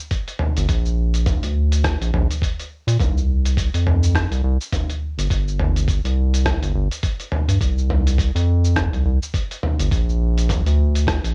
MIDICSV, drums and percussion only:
0, 0, Header, 1, 2, 480
1, 0, Start_track
1, 0, Tempo, 576923
1, 572, Time_signature, 4, 2, 24, 8
1, 9439, End_track
2, 0, Start_track
2, 0, Title_t, "Drums"
2, 90, Note_on_c, 9, 36, 95
2, 90, Note_on_c, 9, 46, 64
2, 93, Note_on_c, 9, 82, 51
2, 173, Note_off_c, 9, 36, 0
2, 173, Note_off_c, 9, 46, 0
2, 176, Note_off_c, 9, 82, 0
2, 229, Note_on_c, 9, 46, 31
2, 232, Note_on_c, 9, 82, 32
2, 312, Note_off_c, 9, 46, 0
2, 316, Note_off_c, 9, 82, 0
2, 325, Note_on_c, 9, 45, 76
2, 408, Note_off_c, 9, 45, 0
2, 471, Note_on_c, 9, 46, 42
2, 474, Note_on_c, 9, 82, 63
2, 554, Note_off_c, 9, 46, 0
2, 557, Note_off_c, 9, 82, 0
2, 572, Note_on_c, 9, 36, 93
2, 572, Note_on_c, 9, 46, 62
2, 575, Note_on_c, 9, 82, 52
2, 655, Note_off_c, 9, 36, 0
2, 655, Note_off_c, 9, 46, 0
2, 658, Note_off_c, 9, 82, 0
2, 712, Note_on_c, 9, 82, 31
2, 795, Note_off_c, 9, 82, 0
2, 948, Note_on_c, 9, 46, 28
2, 951, Note_on_c, 9, 82, 66
2, 1031, Note_off_c, 9, 46, 0
2, 1034, Note_off_c, 9, 82, 0
2, 1050, Note_on_c, 9, 45, 76
2, 1050, Note_on_c, 9, 46, 69
2, 1052, Note_on_c, 9, 36, 105
2, 1053, Note_on_c, 9, 82, 60
2, 1133, Note_off_c, 9, 45, 0
2, 1133, Note_off_c, 9, 46, 0
2, 1135, Note_off_c, 9, 36, 0
2, 1137, Note_off_c, 9, 82, 0
2, 1190, Note_on_c, 9, 46, 41
2, 1193, Note_on_c, 9, 82, 32
2, 1273, Note_off_c, 9, 46, 0
2, 1277, Note_off_c, 9, 82, 0
2, 1432, Note_on_c, 9, 46, 33
2, 1435, Note_on_c, 9, 82, 72
2, 1515, Note_off_c, 9, 46, 0
2, 1519, Note_off_c, 9, 82, 0
2, 1533, Note_on_c, 9, 36, 108
2, 1535, Note_on_c, 9, 37, 71
2, 1535, Note_on_c, 9, 46, 61
2, 1538, Note_on_c, 9, 82, 53
2, 1616, Note_off_c, 9, 36, 0
2, 1618, Note_off_c, 9, 37, 0
2, 1618, Note_off_c, 9, 46, 0
2, 1622, Note_off_c, 9, 82, 0
2, 1678, Note_on_c, 9, 46, 31
2, 1681, Note_on_c, 9, 82, 34
2, 1761, Note_off_c, 9, 46, 0
2, 1764, Note_off_c, 9, 82, 0
2, 1779, Note_on_c, 9, 45, 71
2, 1863, Note_off_c, 9, 45, 0
2, 1919, Note_on_c, 9, 46, 30
2, 1922, Note_on_c, 9, 82, 60
2, 2002, Note_off_c, 9, 46, 0
2, 2005, Note_off_c, 9, 82, 0
2, 2012, Note_on_c, 9, 36, 97
2, 2023, Note_on_c, 9, 46, 62
2, 2026, Note_on_c, 9, 82, 52
2, 2096, Note_off_c, 9, 36, 0
2, 2106, Note_off_c, 9, 46, 0
2, 2110, Note_off_c, 9, 82, 0
2, 2159, Note_on_c, 9, 46, 30
2, 2163, Note_on_c, 9, 82, 32
2, 2242, Note_off_c, 9, 46, 0
2, 2246, Note_off_c, 9, 82, 0
2, 2395, Note_on_c, 9, 46, 42
2, 2399, Note_on_c, 9, 82, 63
2, 2479, Note_off_c, 9, 46, 0
2, 2482, Note_off_c, 9, 82, 0
2, 2493, Note_on_c, 9, 36, 101
2, 2499, Note_on_c, 9, 45, 69
2, 2499, Note_on_c, 9, 46, 55
2, 2502, Note_on_c, 9, 82, 52
2, 2576, Note_off_c, 9, 36, 0
2, 2582, Note_off_c, 9, 45, 0
2, 2582, Note_off_c, 9, 46, 0
2, 2585, Note_off_c, 9, 82, 0
2, 2642, Note_on_c, 9, 82, 31
2, 2725, Note_off_c, 9, 82, 0
2, 2875, Note_on_c, 9, 46, 28
2, 2878, Note_on_c, 9, 82, 68
2, 2958, Note_off_c, 9, 46, 0
2, 2961, Note_off_c, 9, 82, 0
2, 2972, Note_on_c, 9, 36, 109
2, 2978, Note_on_c, 9, 46, 72
2, 2981, Note_on_c, 9, 82, 64
2, 3055, Note_off_c, 9, 36, 0
2, 3061, Note_off_c, 9, 46, 0
2, 3065, Note_off_c, 9, 82, 0
2, 3114, Note_on_c, 9, 46, 40
2, 3118, Note_on_c, 9, 82, 32
2, 3197, Note_off_c, 9, 46, 0
2, 3201, Note_off_c, 9, 82, 0
2, 3218, Note_on_c, 9, 45, 71
2, 3301, Note_off_c, 9, 45, 0
2, 3356, Note_on_c, 9, 82, 71
2, 3439, Note_off_c, 9, 82, 0
2, 3452, Note_on_c, 9, 36, 104
2, 3457, Note_on_c, 9, 37, 76
2, 3457, Note_on_c, 9, 46, 57
2, 3460, Note_on_c, 9, 82, 51
2, 3535, Note_off_c, 9, 36, 0
2, 3540, Note_off_c, 9, 37, 0
2, 3540, Note_off_c, 9, 46, 0
2, 3543, Note_off_c, 9, 82, 0
2, 3592, Note_on_c, 9, 46, 28
2, 3595, Note_on_c, 9, 82, 33
2, 3675, Note_off_c, 9, 46, 0
2, 3679, Note_off_c, 9, 82, 0
2, 3836, Note_on_c, 9, 82, 69
2, 3920, Note_off_c, 9, 82, 0
2, 3932, Note_on_c, 9, 36, 101
2, 3933, Note_on_c, 9, 45, 69
2, 3933, Note_on_c, 9, 46, 64
2, 3937, Note_on_c, 9, 82, 54
2, 4015, Note_off_c, 9, 36, 0
2, 4016, Note_off_c, 9, 45, 0
2, 4016, Note_off_c, 9, 46, 0
2, 4020, Note_off_c, 9, 82, 0
2, 4074, Note_on_c, 9, 46, 28
2, 4077, Note_on_c, 9, 82, 32
2, 4157, Note_off_c, 9, 46, 0
2, 4160, Note_off_c, 9, 82, 0
2, 4315, Note_on_c, 9, 46, 43
2, 4319, Note_on_c, 9, 82, 65
2, 4398, Note_off_c, 9, 46, 0
2, 4402, Note_off_c, 9, 82, 0
2, 4412, Note_on_c, 9, 36, 104
2, 4416, Note_on_c, 9, 46, 60
2, 4419, Note_on_c, 9, 82, 55
2, 4495, Note_off_c, 9, 36, 0
2, 4499, Note_off_c, 9, 46, 0
2, 4502, Note_off_c, 9, 82, 0
2, 4560, Note_on_c, 9, 82, 31
2, 4643, Note_off_c, 9, 82, 0
2, 4654, Note_on_c, 9, 45, 74
2, 4737, Note_off_c, 9, 45, 0
2, 4794, Note_on_c, 9, 46, 28
2, 4797, Note_on_c, 9, 82, 64
2, 4877, Note_off_c, 9, 46, 0
2, 4881, Note_off_c, 9, 82, 0
2, 4890, Note_on_c, 9, 36, 104
2, 4895, Note_on_c, 9, 46, 65
2, 4899, Note_on_c, 9, 82, 62
2, 4974, Note_off_c, 9, 36, 0
2, 4979, Note_off_c, 9, 46, 0
2, 4982, Note_off_c, 9, 82, 0
2, 5034, Note_on_c, 9, 46, 38
2, 5037, Note_on_c, 9, 82, 33
2, 5117, Note_off_c, 9, 46, 0
2, 5121, Note_off_c, 9, 82, 0
2, 5273, Note_on_c, 9, 46, 28
2, 5276, Note_on_c, 9, 82, 69
2, 5356, Note_off_c, 9, 46, 0
2, 5359, Note_off_c, 9, 82, 0
2, 5371, Note_on_c, 9, 36, 102
2, 5372, Note_on_c, 9, 37, 67
2, 5372, Note_on_c, 9, 45, 68
2, 5372, Note_on_c, 9, 46, 60
2, 5375, Note_on_c, 9, 82, 49
2, 5454, Note_off_c, 9, 36, 0
2, 5455, Note_off_c, 9, 37, 0
2, 5455, Note_off_c, 9, 45, 0
2, 5455, Note_off_c, 9, 46, 0
2, 5458, Note_off_c, 9, 82, 0
2, 5511, Note_on_c, 9, 46, 29
2, 5514, Note_on_c, 9, 82, 32
2, 5594, Note_off_c, 9, 46, 0
2, 5598, Note_off_c, 9, 82, 0
2, 5751, Note_on_c, 9, 46, 28
2, 5755, Note_on_c, 9, 82, 65
2, 5834, Note_off_c, 9, 46, 0
2, 5838, Note_off_c, 9, 82, 0
2, 5848, Note_on_c, 9, 46, 60
2, 5849, Note_on_c, 9, 36, 100
2, 5851, Note_on_c, 9, 82, 52
2, 5931, Note_off_c, 9, 46, 0
2, 5932, Note_off_c, 9, 36, 0
2, 5934, Note_off_c, 9, 82, 0
2, 5987, Note_on_c, 9, 46, 30
2, 5990, Note_on_c, 9, 82, 32
2, 6070, Note_off_c, 9, 46, 0
2, 6074, Note_off_c, 9, 82, 0
2, 6088, Note_on_c, 9, 45, 73
2, 6171, Note_off_c, 9, 45, 0
2, 6228, Note_on_c, 9, 46, 40
2, 6232, Note_on_c, 9, 82, 62
2, 6311, Note_off_c, 9, 46, 0
2, 6315, Note_off_c, 9, 82, 0
2, 6329, Note_on_c, 9, 36, 95
2, 6332, Note_on_c, 9, 46, 57
2, 6335, Note_on_c, 9, 82, 53
2, 6412, Note_off_c, 9, 36, 0
2, 6415, Note_off_c, 9, 46, 0
2, 6418, Note_off_c, 9, 82, 0
2, 6473, Note_on_c, 9, 82, 31
2, 6557, Note_off_c, 9, 82, 0
2, 6572, Note_on_c, 9, 45, 76
2, 6656, Note_off_c, 9, 45, 0
2, 6712, Note_on_c, 9, 46, 29
2, 6716, Note_on_c, 9, 82, 63
2, 6796, Note_off_c, 9, 46, 0
2, 6799, Note_off_c, 9, 82, 0
2, 6808, Note_on_c, 9, 36, 106
2, 6814, Note_on_c, 9, 46, 68
2, 6817, Note_on_c, 9, 82, 57
2, 6891, Note_off_c, 9, 36, 0
2, 6897, Note_off_c, 9, 46, 0
2, 6901, Note_off_c, 9, 82, 0
2, 6954, Note_on_c, 9, 46, 41
2, 6958, Note_on_c, 9, 82, 30
2, 7038, Note_off_c, 9, 46, 0
2, 7041, Note_off_c, 9, 82, 0
2, 7193, Note_on_c, 9, 82, 67
2, 7277, Note_off_c, 9, 82, 0
2, 7288, Note_on_c, 9, 36, 106
2, 7291, Note_on_c, 9, 37, 69
2, 7291, Note_on_c, 9, 45, 73
2, 7291, Note_on_c, 9, 46, 54
2, 7294, Note_on_c, 9, 82, 47
2, 7372, Note_off_c, 9, 36, 0
2, 7374, Note_off_c, 9, 37, 0
2, 7374, Note_off_c, 9, 45, 0
2, 7374, Note_off_c, 9, 46, 0
2, 7378, Note_off_c, 9, 82, 0
2, 7432, Note_on_c, 9, 46, 29
2, 7435, Note_on_c, 9, 82, 32
2, 7515, Note_off_c, 9, 46, 0
2, 7518, Note_off_c, 9, 82, 0
2, 7677, Note_on_c, 9, 82, 68
2, 7760, Note_off_c, 9, 82, 0
2, 7770, Note_on_c, 9, 36, 95
2, 7773, Note_on_c, 9, 46, 61
2, 7776, Note_on_c, 9, 82, 54
2, 7853, Note_off_c, 9, 36, 0
2, 7856, Note_off_c, 9, 46, 0
2, 7859, Note_off_c, 9, 82, 0
2, 7914, Note_on_c, 9, 46, 29
2, 7917, Note_on_c, 9, 82, 34
2, 7997, Note_off_c, 9, 46, 0
2, 8000, Note_off_c, 9, 82, 0
2, 8014, Note_on_c, 9, 45, 78
2, 8097, Note_off_c, 9, 45, 0
2, 8150, Note_on_c, 9, 46, 40
2, 8154, Note_on_c, 9, 82, 63
2, 8234, Note_off_c, 9, 46, 0
2, 8237, Note_off_c, 9, 82, 0
2, 8250, Note_on_c, 9, 36, 99
2, 8253, Note_on_c, 9, 46, 57
2, 8256, Note_on_c, 9, 82, 49
2, 8333, Note_off_c, 9, 36, 0
2, 8336, Note_off_c, 9, 46, 0
2, 8339, Note_off_c, 9, 82, 0
2, 8398, Note_on_c, 9, 82, 30
2, 8481, Note_off_c, 9, 82, 0
2, 8634, Note_on_c, 9, 46, 30
2, 8638, Note_on_c, 9, 82, 62
2, 8718, Note_off_c, 9, 46, 0
2, 8721, Note_off_c, 9, 82, 0
2, 8731, Note_on_c, 9, 36, 97
2, 8735, Note_on_c, 9, 45, 92
2, 8735, Note_on_c, 9, 46, 74
2, 8738, Note_on_c, 9, 82, 58
2, 8814, Note_off_c, 9, 36, 0
2, 8818, Note_off_c, 9, 45, 0
2, 8818, Note_off_c, 9, 46, 0
2, 8822, Note_off_c, 9, 82, 0
2, 8874, Note_on_c, 9, 46, 41
2, 8877, Note_on_c, 9, 82, 31
2, 8957, Note_off_c, 9, 46, 0
2, 8960, Note_off_c, 9, 82, 0
2, 9114, Note_on_c, 9, 46, 32
2, 9118, Note_on_c, 9, 82, 68
2, 9198, Note_off_c, 9, 46, 0
2, 9201, Note_off_c, 9, 82, 0
2, 9212, Note_on_c, 9, 36, 105
2, 9219, Note_on_c, 9, 37, 68
2, 9219, Note_on_c, 9, 46, 63
2, 9222, Note_on_c, 9, 82, 51
2, 9295, Note_off_c, 9, 36, 0
2, 9302, Note_off_c, 9, 37, 0
2, 9302, Note_off_c, 9, 46, 0
2, 9305, Note_off_c, 9, 82, 0
2, 9356, Note_on_c, 9, 46, 31
2, 9359, Note_on_c, 9, 82, 29
2, 9439, Note_off_c, 9, 46, 0
2, 9439, Note_off_c, 9, 82, 0
2, 9439, End_track
0, 0, End_of_file